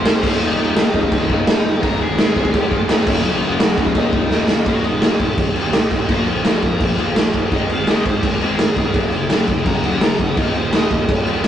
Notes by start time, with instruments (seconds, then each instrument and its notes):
Already playing: lead electric guitar C5 C6
0.04 picked electric bass G#1, distorted electric guitar G#2 D#3 G#3, overdriven electric guitar C4 D#4, snare, crash
0.23 picked electric bass D#1, distorted electric guitar D#2 A#2 D#3, overdriven electric guitar G3 A#3 D#4, kick, crash
0.40 picked electric bass D#1, distorted electric guitar D#2 A#2 D#3, lead electric guitar D#4 D#5, crash
0.58 picked electric bass D#1, distorted electric guitar D#2 A#2 D#3
0.76 picked electric bass D#1, distorted electric guitar D#2 A#2 D#3, snare, crash
0.94 picked electric bass D#1, distorted electric guitar D#2 A#2 D#3, kick
1.03 kick
1.11 picked electric bass C#2, distorted electric guitar D#2 A#2 D#3, overdriven electric guitar G3 A#3 D#4, kick, crash
1.29 picked electric bass C#2, distorted electric guitar D#2 A#2 D#3, overdriven electric guitar G3 A#3 D#4, lead electric guitar D#4 D#5, kick
1.46 picked electric bass D#1, distorted electric guitar D#2 A#2 D#3, snare, crash
1.64 picked electric bass G1, distorted electric guitar D#2 A#2 D#3
1.82 picked electric bass G#1, distorted electric guitar G#2 D#3 G#3, overdriven electric guitar C4 D#4, lead electric guitar A#4 A#5, kick, crash
2.00 picked electric bass G#1, distorted electric guitar G#2 D#3 G#3, lead electric guitar G#4 G#5
2.18 picked electric bass G#1, distorted electric guitar G#2 D#3 G#3, snare, crash
2.36 picked electric bass G#1, distorted electric guitar G#2 D#3 G#3, kick
2.45 kick
2.53 picked electric bass F1, distorted electric guitar G#2 D#3 G#3, lead electric guitar G4 G5, kick, crash
2.70 picked electric bass F1, distorted electric guitar G#2 D#3 G#3, overdriven electric guitar C4 D#4, lead electric guitar F4 F5, kick
2.89 picked electric bass G#1, distorted electric guitar G#2 D#3 G#3, overdriven electric guitar C4 D#4, lead electric guitar D#4 D#5, snare, crash
3.06 picked electric bass F#1, distorted electric guitar F#2 C#3 F#3, overdriven electric guitar A#3 C#4 F#4, lead electric guitar C#4 C#5, kick, crash
3.24 picked electric bass F#1, distorted electric guitar F#2 C#3 F#3, crash
3.42 picked electric bass F#1, distorted electric guitar F#2 C#3 F#3, lead electric guitar F4 F5
3.59 picked electric bass F#1, distorted electric guitar F#2 C#3 F#3, lead electric guitar F#4 F#5, snare, crash
3.77 picked electric bass F#1, distorted electric guitar F#2 C#3 F#3, kick
3.86 lead electric guitar F4 F5, kick
3.95 picked electric bass D#1, distorted electric guitar D#2 A#2 D#3, overdriven electric guitar G3 A#3 D#4, lead electric guitar D#4 D#5, kick, crash
4.12 picked electric bass C#2, distorted electric guitar D#2 A#2 D#3, kick
4.30 picked electric bass D#1, distorted electric guitar D#2 A#2 D#3, snare
4.47 picked electric bass D#1, distorted electric guitar D#2 A#2 D#3, snare
4.66 picked electric bass D#1, distorted electric guitar D#2 A#2 D#3, lead electric guitar F#4, kick, crash
4.84 overdriven electric guitar D#2 A#2, lead electric guitar D#4, crash
5.01 picked electric bass D#1, distorted electric guitar D#2 A#2 D#3, lead electric guitar F#4, snare, crash
5.19 picked electric bass D#1, distorted electric guitar D#2 A#2 D#3, lead electric guitar G4, kick, crash
5.37 picked electric bass D#1, distorted electric guitar D#2 A#2 D#3, kick, crash
5.55 picked electric bass D#1, overdriven electric guitar D#2 A#2 D#3, crash
5.73 picked electric bass C2, distorted electric guitar D#2 A#2 D#3, snare, crash
5.91 picked electric bass G#1, distorted electric guitar D#2 A#2 D#3, kick, crash
6.09 picked electric bass A#1, distorted electric guitar A#2 F3 A#3, lead electric guitar F#4, kick, crash
6.26 overdriven electric guitar A#2 F3, lead electric guitar C#4, crash
6.43 picked electric bass A#1, distorted electric guitar A#2 F3 A#3, lead electric guitar F#4, snare, crash
6.63 picked electric bass G#1, distorted electric guitar A#2 F3 A#3, lead electric guitar A#4, kick, crash
6.80 picked electric bass G#1, distorted electric guitar A#2 F3 A#3, kick, crash
6.97 overdriven electric guitar A#2 F3 A#3, crash
7.16 picked electric bass A#1, distorted electric guitar A#2 F3 A#3, snare, crash
7.34 picked electric bass A#1, distorted electric guitar A#2 F3 A#3, kick, crash
7.52 picked electric bass G#1, distorted electric guitar G#2 D#3 G#3, lead electric guitar D#5, kick, crash
7.68 overdriven electric guitar G#2 D#3, lead electric guitar F5, crash
7.87 picked electric bass G#1, distorted electric guitar G#2 D#3 G#3, lead electric guitar D#5, snare, crash
8.05 picked electric bass G#1, distorted electric guitar G#2 D#3 G#3, lead electric guitar C5, kick, crash
8.22 picked electric bass G#1, distorted electric guitar G#2 D#3 G#3, lead electric guitar A#4, kick, crash
8.41 picked electric bass G#1, overdriven electric guitar G#2 D#3 G#3, lead electric guitar G#4, crash
8.58 picked electric bass F1, distorted electric guitar G#2 D#3 G#3, lead electric guitar G#4, snare, crash
8.76 picked electric bass D#1, distorted electric guitar G#2 D#3 G#3, kick, crash
8.94 picked electric bass F#1, distorted electric guitar F#2 C#3 F#3, kick, crash
9.12 overdriven electric guitar F#2 C#3, crash
9.29 picked electric bass F#1, distorted electric guitar F#2 C#3 F#3, snare, crash
9.48 picked electric bass D#1, distorted electric guitar F#2 C#3 F#3, kick, crash
9.65 picked electric bass D#1, distorted electric guitar F#2 C#3 F#3, lead electric guitar A#5, kick, crash
9.83 overdriven electric guitar F#2 C#3 F#3, lead electric guitar F#5, crash
10.01 picked electric bass F#1, distorted electric guitar F#2 C#3 F#3, lead electric guitar A#5, snare, crash
10.19 picked electric bass F#1, distorted electric guitar F#2 C#3 F#3, lead electric guitar F#5, kick, crash
10.37 picked electric bass D#1, distorted electric guitar D#2 A#2 D#3, lead electric guitar D#5, kick, crash
10.55 overdriven electric guitar D#2 A#2, lead electric guitar C5, crash
10.73 picked electric bass D#1, distorted electric guitar D#2 A#2 D#3, lead electric guitar D#5, snare, crash
10.90 picked electric bass D#1, distorted electric guitar D#2 A#2 D#3, lead electric guitar D#5, kick, crash
11.08 picked electric bass D#1, distorted electric guitar D#2 A#2 D#3, kick, crash
11.25 picked electric bass D#1, overdriven electric guitar D#2 A#2 D#3, crash
11.43 picked electric bass C2, distorted electric guitar D#2 A#2, snare, crash